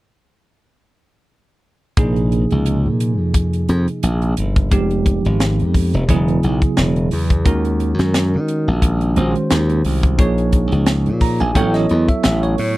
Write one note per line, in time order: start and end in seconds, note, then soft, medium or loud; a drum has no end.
1.97 2.44 A#1 medium
1.97 4.68 C3 medium
1.97 4.68 F3 soft
1.97 4.68 A#3 medium
1.97 4.68 D#4 medium
1.97 4.68 G#4 medium
1.97 kick medium
1.97 closed hi-hat medium
2.16 closed hi-hat soft
2.32 closed hi-hat soft
2.51 2.87 C#2 medium
2.51 closed hi-hat soft
2.66 closed hi-hat medium
2.86 3.19 A#2 medium
3.00 closed hi-hat soft
3.19 3.63 F2 medium
3.34 kick medium
3.34 closed hi-hat medium
3.53 closed hi-hat soft
3.69 3.86 F2 medium
3.69 closed hi-hat soft
3.88 closed hi-hat soft
4.03 4.33 A#1 medium
4.03 closed hi-hat medium
4.22 closed hi-hat soft
4.37 4.72 G1 medium
4.37 closed hi-hat soft
4.56 kick medium
4.56 closed hi-hat soft
4.71 5.18 F1 medium
4.71 6.06 F3 medium
4.71 6.06 G#3 medium
4.71 6.06 B3 medium
4.71 6.06 D#4 medium
4.71 6.07 G4 medium
4.71 kick medium
4.71 closed hi-hat medium
4.91 closed hi-hat soft
5.06 kick medium
5.06 closed hi-hat soft
5.25 5.62 G#1 medium
5.25 closed hi-hat soft
5.40 snare medium
5.40 closed hi-hat medium
5.60 5.96 F2 medium
5.60 closed hi-hat soft
5.74 kick medium
5.74 open hi-hat medium
5.94 6.07 F1 medium
5.94 closed hi-hat soft
6.09 6.39 E1 medium
6.09 7.43 C#3 medium
6.09 7.43 F#3 medium
6.09 7.43 B3 medium
6.09 7.44 E4 medium
6.09 7.44 G#4 medium
6.09 kick medium
6.09 closed hi-hat medium
6.28 closed hi-hat soft
6.43 6.60 B1 medium
6.43 closed hi-hat soft
6.62 kick medium
6.62 closed hi-hat soft
6.77 7.08 E1 medium
6.77 snare medium
6.77 closed hi-hat medium
6.96 closed hi-hat soft
7.11 7.46 E2 medium
7.11 open hi-hat medium
7.30 kick medium
7.30 closed hi-hat soft
7.45 7.92 D#2 medium
7.45 9.13 D#3 medium
7.45 9.13 G#3 medium
7.45 9.13 C#4 medium
7.45 9.14 F#4 medium
7.45 9.14 A#4 medium
7.45 kick medium
7.45 closed hi-hat medium
7.65 closed hi-hat soft
7.80 closed hi-hat soft
7.99 8.35 F#2 medium
7.99 snare soft
7.99 closed hi-hat soft
8.14 snare medium
8.14 closed hi-hat medium
8.34 8.69 D#3 medium
8.48 closed hi-hat soft
8.68 9.11 A#1 medium
8.82 kick medium
8.82 closed hi-hat medium
9.01 closed hi-hat soft
9.16 9.33 A#1 medium
9.16 10.19 D#3 soft
9.16 10.19 G#3 soft
9.16 10.19 C#4 soft
9.16 10.20 F#4 soft
9.16 10.20 C5 soft
9.16 closed hi-hat soft
9.36 closed hi-hat soft
9.50 9.81 D#2 medium
9.50 snare medium
9.50 closed hi-hat medium
9.69 closed hi-hat soft
9.85 10.19 C2 medium
9.85 open hi-hat medium
10.03 kick medium
10.03 closed hi-hat soft
10.18 10.66 A#1 medium
10.18 11.53 F3 medium
10.18 11.53 A#3 medium
10.18 11.53 D#4 medium
10.18 11.53 G#4 medium
10.18 11.53 C#5 medium
10.18 kick medium
10.18 closed hi-hat medium
10.38 closed hi-hat soft
10.52 kick medium
10.52 closed hi-hat medium
10.72 11.08 C#2 medium
10.72 closed hi-hat soft
10.86 snare medium
10.86 closed hi-hat medium
11.06 11.42 A#2 medium
11.06 closed hi-hat soft
11.21 11.39 A#5 medium
11.21 kick medium
11.21 open hi-hat medium
11.40 11.54 A#1 medium
11.40 11.55 G#5 medium
11.40 closed hi-hat soft
11.55 11.86 A1 medium
11.55 12.77 F#3 medium
11.55 12.77 B3 medium
11.55 12.77 E4 medium
11.55 12.77 A4 medium
11.55 12.42 C#5 medium
11.55 11.73 G5 medium
11.55 kick medium
11.55 closed hi-hat medium
11.74 12.06 D#5 medium
11.74 snare soft
11.74 closed hi-hat soft
11.89 12.07 E2 medium
11.89 closed hi-hat soft
12.08 12.22 E5 medium
12.08 kick medium
12.08 closed hi-hat soft
12.23 12.55 A1 medium
12.23 12.41 E5 medium
12.23 snare medium
12.23 closed hi-hat medium
12.43 12.77 C#5 medium
12.43 closed hi-hat soft
12.58 12.77 A2 medium
12.58 open hi-hat medium